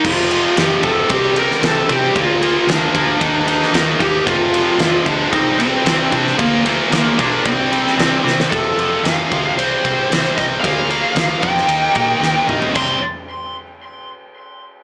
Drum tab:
CC |x---------------|----------------|----------------|----------------|
RD |--x-x-x-x-x-x-x-|x-x-x-x-x-x-x-x-|x-x-x-x-x-x-x-x-|x-x-x-x-x-x-x---|
SD |----o------oo---|----o------oo---|----o-------o--o|----o------oo-oo|
T2 |----------------|----------------|----------------|----------------|
FT |----------------|----------------|----------------|----------------|
BD |o-----o-o-----o-|o-----o-o-----o-|o-----o-o-----o-|o-----o-o-------|

CC |----------------|----------------|x---------------|
RD |x-x-x-x-x-x-x-x-|x-x-x-x-x-x-----|----------------|
SD |----o-------o-o-|----o--o----o---|----------------|
T2 |----------------|--------------o-|----------------|
FT |----------------|---------------o|----------------|
BD |o-----o---o---o-|o-----o---o-----|o---------------|